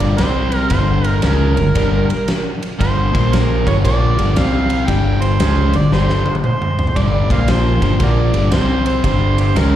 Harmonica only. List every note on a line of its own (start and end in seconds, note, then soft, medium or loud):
0.00 0.16 D5 medium
0.17 0.66 C5 medium
0.68 1.08 C5 loud
1.08 1.20 A#4 loud
1.20 2.60 A#4 medium
2.81 3.34 C5 loud
3.33 3.66 A#4 medium
3.67 3.75 C#5 medium
3.86 4.38 D5 loud
4.37 4.88 F5 loud
4.86 5.24 G5 loud
5.23 5.78 C5 loud
5.76 5.92 D5 medium
5.93 6.24 C5 medium
6.25 6.34 C5 medium
6.44 6.97 C5 medium
6.96 7.30 D5 loud
7.32 7.39 C5 medium
7.32 7.39 D5 medium
7.32 7.53 F5 medium
7.51 8.01 C5 medium
8.03 8.10 F#4 medium
8.03 8.11 A#4 medium
8.03 8.54 D5 medium
8.52 8.86 C5 medium
8.86 9.03 C5 medium
9.05 9.36 C5 medium
9.40 9.47 G4 medium
9.40 9.58 C5 medium
9.57 9.76 A#4 medium